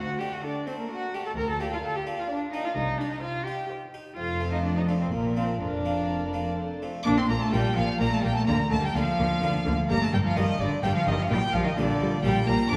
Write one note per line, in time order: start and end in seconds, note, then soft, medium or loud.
0.00 0.32 D2 soft
0.00 0.33 D2 medium
0.00 0.20 F#4 medium
0.00 0.20 F#5 medium
0.19 0.54 A3 soft
0.19 0.54 D4 soft
0.19 0.35 G4 medium
0.19 0.32 G5 soft
0.33 0.45 F#4 medium
0.33 0.44 F#5 soft
0.43 0.68 D4 medium
0.43 0.78 A4 soft
0.43 0.66 D5 medium
0.43 0.78 A5 soft
0.67 1.01 A3 soft
0.67 0.78 C4 medium
0.67 1.01 D4 soft
0.67 0.78 C5 soft
0.79 0.90 A#3 medium
0.79 0.90 A#4 soft
0.90 1.15 F#4 medium
0.90 1.24 A4 medium
0.90 1.13 F#5 medium
0.90 1.25 A5 soft
1.14 1.31 A3 soft
1.14 1.31 D4 soft
1.14 1.25 G4 medium
1.14 1.25 G5 medium
1.25 1.31 A4 medium
1.25 1.36 A5 medium
1.36 1.73 D2 medium
1.36 1.72 D2 soft
1.36 1.48 A#4 medium
1.36 1.48 A#5 medium
1.49 1.60 A4 medium
1.49 1.60 A5 medium
1.60 1.93 A#3 soft
1.60 1.94 D4 soft
1.60 1.94 F4 soft
1.60 1.65 G4 medium
1.60 1.72 G5 medium
1.72 1.77 F4 medium
1.72 1.83 F5 medium
1.83 1.97 A4 medium
1.83 2.17 A#4 soft
1.83 2.18 F5 soft
1.83 1.95 A5 medium
1.94 2.21 G4 medium
1.94 2.02 G5 soft
2.06 2.40 A#3 soft
2.06 2.40 D4 soft
2.06 2.40 F4 soft
2.17 2.29 F4 medium
2.17 2.29 F5 medium
2.28 2.52 D4 medium
2.28 2.64 A#4 soft
2.28 2.36 D5 medium
2.28 2.64 F5 medium
2.51 2.70 A#3 soft
2.51 2.70 D4 soft
2.51 2.66 D#4 medium
2.51 2.70 F4 soft
2.51 2.63 D#5 medium
2.64 2.75 F4 medium
2.64 2.75 F5 medium
2.75 3.13 C2 medium
2.75 3.12 C2 soft
2.75 2.99 D#4 medium
2.75 2.99 D#5 medium
2.98 3.14 D4 medium
2.98 3.34 D#4 soft
2.98 3.34 G4 soft
2.98 3.10 D5 medium
3.11 3.22 D#4 medium
3.11 3.22 D#5 medium
3.22 3.46 F4 medium
3.22 3.58 C5 medium
3.22 3.58 D#5 soft
3.22 3.45 F5 medium
3.45 3.81 D#4 soft
3.45 3.69 G4 medium
3.45 3.81 G4 soft
3.45 3.69 G5 medium
3.69 4.04 C5 soft
3.69 4.04 D#5 soft
3.94 4.11 D#4 soft
3.94 4.11 G4 soft
4.15 5.08 F1 medium
4.15 5.08 F2 medium
4.15 5.08 F2 soft
4.15 4.49 F4 medium
4.15 5.08 A4 medium
4.15 5.08 C5 soft
4.15 4.50 F5 medium
4.41 4.75 A3 soft
4.41 4.75 C4 soft
4.41 4.75 F4 soft
4.52 4.62 D#4 medium
4.52 4.64 D#5 medium
4.63 4.75 D4 medium
4.63 4.76 D5 medium
4.76 4.81 D#4 medium
4.76 4.88 D#5 soft
4.86 5.05 A3 soft
4.86 5.06 C4 soft
4.86 4.91 D4 medium
4.86 5.06 F4 soft
4.86 4.93 D5 medium
5.00 5.12 C4 medium
5.00 5.07 C5 soft
5.11 5.60 A#1 soft
5.11 5.60 A#2 soft
5.11 5.56 A#2 soft
5.11 5.35 A#3 medium
5.11 5.59 A#4 soft
5.11 5.36 A#4 medium
5.11 5.59 D5 soft
5.35 5.54 A#3 soft
5.35 5.59 C4 medium
5.35 5.54 D4 soft
5.35 5.54 F4 soft
5.35 5.45 C5 soft
5.60 6.85 F1 soft
5.60 6.85 F2 soft
5.60 6.81 F2 soft
5.60 6.79 D4 medium
5.60 6.55 A#4 soft
5.60 6.55 D5 soft
5.60 6.79 D5 medium
5.85 6.20 A#3 soft
5.85 6.20 D4 soft
5.85 6.20 F4 soft
6.34 6.51 A#3 soft
6.34 6.51 D4 soft
6.34 6.51 F4 soft
6.57 6.85 A4 soft
6.57 6.84 C5 soft
6.82 6.99 A3 soft
6.82 7.00 C4 soft
6.82 7.00 F4 soft
7.05 7.14 A#1 medium
7.05 7.14 A#2 medium
7.05 7.27 A#2 medium
7.05 7.13 A#3 medium
7.05 7.19 D4 medium
7.05 7.10 D6 loud
7.05 7.11 D6 medium
7.17 7.28 C4 medium
7.17 7.23 C6 medium
7.17 7.30 C6 medium
7.28 7.37 A#1 medium
7.28 7.37 A#2 medium
7.28 7.51 A#2 medium
7.28 7.39 A#3 medium
7.28 7.37 A#3 medium
7.28 7.41 A#5 loud
7.28 7.35 A#5 medium
7.40 7.54 A3 medium
7.40 7.52 A5 medium
7.40 7.54 A5 medium
7.52 7.61 A#1 medium
7.52 7.61 A#2 medium
7.52 7.75 A#2 medium
7.52 7.77 G3 medium
7.52 7.61 A#3 medium
7.52 7.87 A#3 medium
7.52 7.88 D4 medium
7.52 7.88 F4 medium
7.52 7.76 G5 medium
7.75 7.85 A#1 medium
7.75 7.85 A#2 medium
7.75 7.99 A#2 medium
7.75 7.98 F3 medium
7.75 7.85 A#3 medium
7.75 8.00 F5 medium
7.75 8.00 F5 loud
7.98 8.09 A#1 medium
7.98 8.08 A#2 medium
7.98 8.22 A#2 medium
7.98 8.11 A#3 medium
7.98 8.08 A#3 medium
7.98 8.35 A#3 soft
7.98 8.35 D4 soft
7.98 8.35 F4 medium
7.98 8.12 A#5 medium
8.11 8.24 A3 medium
8.11 8.25 A5 medium
8.22 8.32 A#1 medium
8.22 8.32 A#2 medium
8.22 8.46 A#2 medium
8.22 8.34 G3 medium
8.22 8.32 A#3 medium
8.22 8.36 G5 medium
8.34 8.47 A3 medium
8.34 8.48 A5 medium
8.34 8.42 A5 medium
8.45 8.56 D2 medium
8.45 8.56 D3 medium
8.45 8.69 D3 medium
8.45 8.69 A#3 loud
8.45 8.56 A#3 medium
8.45 8.71 A#5 medium
8.45 8.56 A#5 loud
8.69 8.79 D2 medium
8.69 8.79 D3 medium
8.69 8.93 D3 medium
8.69 8.81 A3 medium
8.69 8.80 A#3 medium
8.69 8.83 A5 medium
8.69 8.84 A5 medium
8.81 8.93 G3 medium
8.81 8.95 G5 medium
8.81 8.96 G5 medium
8.94 9.03 D2 medium
8.94 9.03 D3 medium
8.94 9.17 D3 medium
8.94 9.76 F3 medium
8.94 9.03 A#3 medium
8.94 9.29 A#3 medium
8.94 9.30 D4 medium
8.94 9.30 F4 medium
8.94 9.78 F5 loud
8.94 9.77 F5 medium
9.19 9.27 D2 medium
9.19 9.27 D3 medium
9.19 9.40 D3 medium
9.19 9.27 A#3 medium
9.42 9.50 D2 medium
9.42 9.51 D3 medium
9.42 9.64 D3 medium
9.42 9.50 A#3 medium
9.42 9.77 A#3 soft
9.42 9.77 D4 soft
9.42 9.77 F4 medium
9.66 9.74 D2 medium
9.66 9.74 D3 medium
9.66 9.88 D3 medium
9.66 9.74 A#3 medium
9.88 9.98 G1 medium
9.88 10.11 G2 medium
9.88 9.98 G2 medium
9.88 9.98 G3 medium
9.88 10.00 A#3 medium
9.88 10.00 A#5 loud
9.88 10.01 A#5 medium
10.01 10.06 A3 medium
10.01 10.06 A5 medium
10.01 10.14 A5 medium
10.12 10.22 G1 medium
10.12 10.35 G2 medium
10.12 10.22 G2 medium
10.12 10.17 G3 medium
10.12 10.22 G3 medium
10.12 10.17 G5 medium
10.12 10.18 G5 medium
10.24 10.39 F3 medium
10.24 10.37 F5 medium
10.36 10.45 G1 medium
10.36 10.58 G2 medium
10.36 10.45 G2 medium
10.36 10.60 D#3 medium
10.36 10.45 G3 medium
10.36 10.71 A#3 medium
10.36 10.71 D4 medium
10.36 10.71 G4 medium
10.36 10.60 D#5 loud
10.36 10.60 D#5 medium
10.60 10.69 G1 medium
10.60 10.81 G2 medium
10.60 10.68 G2 medium
10.60 10.83 D3 medium
10.60 10.69 G3 medium
10.60 10.68 D5 medium
10.60 10.84 D5 loud
10.83 10.92 G1 medium
10.83 10.92 G2 medium
10.83 11.05 G2 medium
10.83 10.94 G3 medium
10.83 10.93 G3 medium
10.83 11.18 A#3 soft
10.83 11.18 D4 soft
10.83 11.18 G4 medium
10.83 10.88 G5 medium
10.83 10.96 G5 loud
10.95 11.07 F3 medium
10.95 11.07 F5 medium
11.07 11.15 G1 medium
11.07 11.15 G2 medium
11.07 11.28 G2 medium
11.07 11.18 D#3 medium
11.07 11.17 G3 medium
11.07 11.19 D#5 medium
11.18 11.29 F3 medium
11.18 11.31 F5 medium
11.30 11.39 A#1 medium
11.30 11.38 A#2 medium
11.30 11.52 A#2 medium
11.30 11.38 G3 medium
11.30 11.40 G3 medium
11.30 11.54 G5 loud
11.30 11.54 G5 medium
11.53 11.62 A#1 medium
11.53 11.61 A#2 medium
11.53 11.75 A#2 medium
11.53 11.66 F3 medium
11.53 11.63 G3 medium
11.53 11.66 F5 medium
11.64 11.75 D#3 medium
11.64 11.78 D#5 medium
11.76 11.85 A#1 medium
11.76 11.85 A#2 medium
11.76 11.99 A#2 medium
11.76 12.21 D3 medium
11.76 11.86 G3 medium
11.76 12.11 A#3 medium
11.76 12.12 D4 medium
11.76 12.12 G4 medium
11.76 12.23 D5 medium
11.76 12.24 D5 medium
12.00 12.09 A#1 medium
12.00 12.08 A#2 medium
12.00 12.22 A#2 medium
12.00 12.10 G3 medium
12.22 12.32 A#1 medium
12.22 12.32 A#2 medium
12.22 12.45 A#2 medium
12.22 12.45 G3 medium
12.22 12.34 G3 medium
12.22 12.58 A#3 soft
12.22 12.58 D4 soft
12.22 12.58 G4 medium
12.22 12.47 G5 loud
12.26 12.34 G5 medium
12.45 12.56 A#1 medium
12.45 12.55 A#2 medium
12.45 12.69 A#2 medium
12.45 12.56 G3 medium
12.45 12.69 A#3 medium
12.45 12.70 A#5 loud
12.45 12.71 A#5 medium
12.69 12.77 F1 medium
12.69 12.77 F2 medium
12.69 12.77 A3 medium
12.69 12.77 D4 loud
12.69 12.77 D6 loud